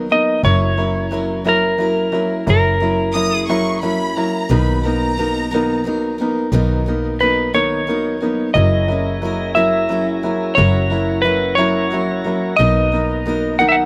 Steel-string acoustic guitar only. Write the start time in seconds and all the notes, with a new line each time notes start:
Already playing: F#3 B3
0.09 F#3 B3 D#4 A#4
0.43 F#3 C#4 E4 A#4
0.77 C#4 E4 A#4
1.11 F#3 C#4 E4 A#4
1.44 F#3 C#4 E4 A#4
1.78 F#3 C#4 E4 A#4
2.12 C#4 E4 A#4
2.47 F#3 C#4 E4 A#4
2.80 C#4 E4 A#4
3.14 F#3 C#4 E4 A#4
3.48 F#3 C#4 E4 A#4
3.82 F#3 C#4 E4
4.15 C#4 E4 A#4
4.49 B2 D#3 F#3 B3 D#4
4.83 F#3 B3 D#4 A#4
5.17 F#3 B3 D#4 A#4
5.51 B2 D#3 F#3 B3 D#4 A#4
5.84 F#3 B3 D#4 A#4
6.18 F#3 B3 D#4 A#4
6.52 B2 D#3 F#3 B3 D#4 A#4
6.86 F#3 B3 D#4 A#4
7.20 F#3 B3 D#4
7.54 B2 D#3 F#3 B3 D#4 A#4
7.87 F#3 B3 D#4 A#4
8.20 F#3 B3 D#4 A#4
8.55 F#3 C#4 E4 A#4
8.88 C#4 E4 A#4
9.22 F#3 C#4 E4 A#4
9.56 F#3 C#4 E4 A#4
9.89 F#3 C#4 E4 A#4
10.23 C#4 E4 A#4
10.57 F#3 C#4 E4 A#4
10.90 C#4 E4 A#4
11.24 F#3 C#4 E4
11.58 F#3 C#4 E4 A#4
11.90 F#3 C#4 E4 A#4
12.24 C#4 E4 A#4
12.58 B2 D#3 F#3 B3 D#4 A#4
12.92 F#3 B3 D#4 A#4
13.26 F#3 B3 D#4 A#4
13.59 B2 D#3 F#3 B3 D#4 A#4